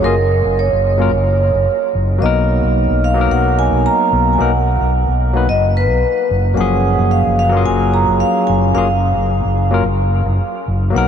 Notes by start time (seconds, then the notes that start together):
0.02 F#1 F#3 A#3 C#4 F4 G#4 A#4
0.45 F#1
0.59 C#5
0.72 F#1
0.98 F#3 A#3 C#4 F4
1.02 A#4
1.12 F#1
1.53 F#1
1.95 F#1
2.18 B1 F#3 A#3 D#5
2.22 B3 D#4 A#4
2.63 B1
2.90 B1
3.04 F5
3.14 F#3 A#3 B3
3.20 D#4 A#4
3.31 B1 F#5
3.59 G#5
3.71 B1
3.86 A#5
4.12 B1
4.33 G#5
4.38 B1 F#3 A#3 B3 D#4 A#4 F#5
4.80 B1
5.08 B1
5.33 F#3 A#3 B3 D#4 B4
5.48 F#1 D#5
5.77 B4
5.89 B1
6.30 F#1
6.54 F#1 F#3 A#3 C#4 F#5
6.59 F3 G#4
6.99 F#1
7.11 F5
7.26 F#1
7.39 F5
7.49 F#3 A#3 C#4
7.55 F4 G#4
7.66 F#1 G#5
7.94 A#5
8.08 F#1
8.20 F5
8.47 F#1 G#5
8.74 F#1 F#3 A#3 C#4 F4 G#4 F5
9.17 F#1
9.45 F#1
9.71 F#3 A#3 C#4 F4 A#4
9.85 F#1
10.26 F#1
10.67 F#1
10.90 F#3 A#3 B3
10.95 B1 D#4 A#4 F#5